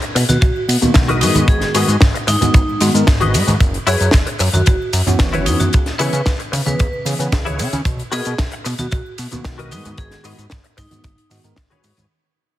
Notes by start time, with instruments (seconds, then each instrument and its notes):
0.02 muted clean electric guitar stroke, closed hi-hat, cabasa
0.15 analog synth bass B2, muted clean electric guitar stroke, open hi-hat, ride, cabasa, shaker
0.29 analog synth bass B2, vibraphone F#4, muted clean electric guitar stroke, closed hi-hat, high conga, cabasa, shaker
0.41 analog synth bass B1, vibraphone F#4, muted clean electric guitar stroke, kick, closed hi-hat, ride, cabasa, shaker
0.56 cabasa
0.68 analog synth bass B2, open hi-hat, ride, cabasa, shaker
0.82 analog synth bass B2, tine electric piano D#3 A#3 B3 F#4, closed hi-hat, low conga, cabasa, shaker
0.94 analog synth bass B1, tine electric piano D#3 B3 F#4, kick, snare, closed hi-hat, ride, cabasa, shaker
1.08 clean electric guitar F#4 A#4 B4 D#5, closed hi-hat, high conga, cabasa
1.21 analog synth bass G#2, vibraphone D#4, clean electric guitar F#4 G#4 B4 D#5, open hi-hat, ride, cabasa, shaker
1.35 analog synth bass G#2, closed hi-hat, muted conga, high conga, cabasa, shaker
1.48 analog synth bass G#1, vibraphone G#4, kick, closed hi-hat, ride, cabasa, shaker
1.61 snare, closed hi-hat, cabasa
1.75 analog synth bass G#2, tine electric piano D#3 G#3 B3 F#4, clean electric guitar F#4 G#4 B4 D#5, open hi-hat, ride, cabasa, shaker
1.88 analog synth bass G#2, closed hi-hat, shaker
2.01 analog synth bass G#1, kick, snare, closed hi-hat, ride, cabasa, shaker
2.14 muted clean electric guitar stroke, closed hi-hat, cabasa
2.27 analog synth bass G#2, vibraphone D#4, muted clean electric guitar stroke, open hi-hat, ride, muted conga, cabasa, shaker
2.41 analog synth bass G#2, tine electric piano D#3 G#3 B3 F#4, muted clean electric guitar stroke, closed hi-hat, muted conga, high conga, cabasa, shaker
2.54 analog synth bass G#1, muted clean electric guitar stroke, kick, closed hi-hat, ride, cabasa, shaker
2.68 analog synth bass G#2, cabasa
2.81 analog synth bass G#2, tine electric piano D#3 G#3 B3 F#4, open hi-hat, ride, cabasa, shaker
2.94 analog synth bass G#2, tine electric piano D#3 G#3 B3 A#4, closed hi-hat, cabasa, shaker
3.07 analog synth bass G#1, kick, snare, closed hi-hat, ride, cabasa, shaker
3.21 clean electric guitar F#4 G#4 B4 D#5, closed hi-hat, high conga, cabasa
3.34 analog synth bass G#2, open hi-hat, ride, muted conga, cabasa, shaker
3.47 analog synth bass G#2, closed hi-hat, high conga, cabasa, shaker
3.60 analog synth bass F#1, kick, closed hi-hat, ride, cabasa, shaker
3.74 closed hi-hat, cabasa
3.87 analog synth bass F#2, clean electric guitar E4 F#4 B4 C#5, vibraphone G#4, open hi-hat, ride, cabasa, shaker
4.00 analog synth bass F#2, closed hi-hat, shaker
4.11 analog synth bass F#1, kick, snare, closed hi-hat, ride, cabasa, shaker
4.26 muted clean electric guitar stroke, closed hi-hat, cabasa
4.39 analog synth bass F#2, muted clean electric guitar stroke, open hi-hat, ride, cabasa, shaker
4.53 analog synth bass F#2, vibraphone F#4, muted clean electric guitar stroke, closed hi-hat, high conga, cabasa, shaker
4.66 analog synth bass F#1, vibraphone F#4, muted clean electric guitar stroke, kick, closed hi-hat, ride, cabasa, shaker
4.82 cabasa
4.93 analog synth bass F#2, open hi-hat, ride, cabasa, shaker
5.06 analog synth bass F#2, tine electric piano E3 B3 C#4 F#4, closed hi-hat, low conga, cabasa, shaker
5.19 analog synth bass F#1, tine electric piano E3 B3 C#4 F#4, kick, snare, closed hi-hat, ride, cabasa, shaker
5.33 clean electric guitar E4 F#4 B4 C#5, closed hi-hat, high conga, cabasa
5.46 analog synth bass F#2, vibraphone D#4, open hi-hat, ride, cabasa, shaker
5.60 analog synth bass F#2, vibraphone F#4, closed hi-hat, muted conga, high conga, cabasa, shaker
5.73 analog synth bass C#2, kick, closed hi-hat, ride, cabasa, shaker
5.86 snare, closed hi-hat, cabasa
5.98 analog synth bass C#3, tine electric piano E3 B3 C#4 G#4, clean electric guitar E4 G#4 B4 C#5, vibraphone B4, open hi-hat, ride, cabasa, shaker
6.13 analog synth bass C#3, vibraphone B4, closed hi-hat, cabasa, shaker
6.26 analog synth bass C#2, kick, snare, closed hi-hat, ride, cabasa, shaker
6.39 muted clean electric guitar stroke, closed hi-hat, cabasa
6.52 analog synth bass C#3, muted clean electric guitar stroke, open hi-hat, ride, muted conga, cabasa, shaker
6.66 analog synth bass C#3, tine electric piano E3 B3 C#4 G#4, vibraphone B4, muted clean electric guitar stroke, closed hi-hat, muted conga, high conga, cabasa, shaker
6.79 analog synth bass C#2, muted clean electric guitar stroke, kick, closed hi-hat, ride, cabasa, shaker
6.93 analog synth bass C#3, cabasa
7.05 analog synth bass C#3, tine electric piano E3 B3 C#4 G#4, open hi-hat, ride, cabasa, shaker
7.19 analog synth bass C#3, tine electric piano E3 B3 C#4 B4, closed hi-hat, shaker
7.32 analog synth bass C#2, kick, snare, closed hi-hat, ride, cabasa, shaker
7.45 clean electric guitar E4 G#4 B4 C#5, closed hi-hat, high conga, cabasa
7.59 analog synth bass C#3, open hi-hat, ride, muted conga, cabasa, shaker
7.73 analog synth bass C#3, closed hi-hat, high conga, cabasa, shaker
7.85 analog synth bass B1, kick, closed hi-hat, ride, cabasa, shaker
7.99 closed hi-hat, cabasa
8.12 analog synth bass B2, clean electric guitar F#4 A#4 B4 D#5, vibraphone G#4, open hi-hat, ride, cabasa, shaker
8.25 analog synth bass B2, closed hi-hat, cabasa, shaker
8.38 analog synth bass B1, kick, snare, closed hi-hat, ride, cabasa, shaker
8.52 muted clean electric guitar stroke, closed hi-hat
8.64 analog synth bass B2, muted clean electric guitar stroke, open hi-hat, ride, cabasa, shaker
8.78 analog synth bass B2, vibraphone F#4, muted clean electric guitar stroke, closed hi-hat, high conga, cabasa, shaker
8.91 analog synth bass B1, vibraphone F#4, muted clean electric guitar stroke, kick, closed hi-hat, ride, cabasa, shaker
9.06 cabasa
9.18 analog synth bass B2, open hi-hat, ride, cabasa, shaker
9.31 analog synth bass B2, tine electric piano D#3 A#3 B3 F#4, closed hi-hat, low conga, cabasa, shaker
9.44 analog synth bass B1, tine electric piano D#3 B3 F#4, kick, snare, closed hi-hat, ride, cabasa, shaker
9.58 clean electric guitar F#4 A#4 B4 D#5, closed hi-hat, high conga, cabasa
9.71 analog synth bass G#2, vibraphone D#4, clean electric guitar F#4 G#4 B4 D#5, open hi-hat, ride, cabasa, shaker
9.85 analog synth bass G#2, closed hi-hat, muted conga, high conga, cabasa, shaker
9.98 analog synth bass G#1, vibraphone G#4, kick, closed hi-hat, ride, cabasa, shaker
10.11 snare, closed hi-hat
10.24 analog synth bass G#2, tine electric piano D#3 G#3 B3 F#4, clean electric guitar F#4 G#4 B4 D#5, open hi-hat, ride, cabasa, shaker
10.38 analog synth bass G#2, closed hi-hat, shaker
10.50 analog synth bass G#1, kick, snare, closed hi-hat, ride, cabasa, shaker
10.64 muted clean electric guitar stroke, closed hi-hat
10.77 analog synth bass G#2, vibraphone D#4, muted clean electric guitar stroke, kick, open hi-hat, ride, muted conga, cabasa, shaker
10.90 analog synth bass G#2, tine electric piano D#3 G#3 B3 F#4, muted clean electric guitar stroke, closed hi-hat, muted conga, high conga, cabasa, shaker
11.04 analog synth bass G#1, muted clean electric guitar stroke, kick, closed hi-hat, ride, shaker
11.18 analog synth bass G#2, closed hi-hat
11.30 analog synth bass G#2, tine electric piano D#3 G#3 B3 F#4, open hi-hat, ride, cabasa, shaker
11.44 analog synth bass G#2, tine electric piano D#3 G#3 B3 A#4, closed hi-hat, shaker
11.56 analog synth bass G#1, kick, snare, closed hi-hat, ride, shaker
11.70 clean electric guitar F#4 G#4 B4 C#5, closed hi-hat, high conga, low conga, cabasa
11.84 analog synth bass G#2, open hi-hat, ride, muted conga, cabasa, shaker
11.97 analog synth bass G#2, closed hi-hat, high conga, cabasa, shaker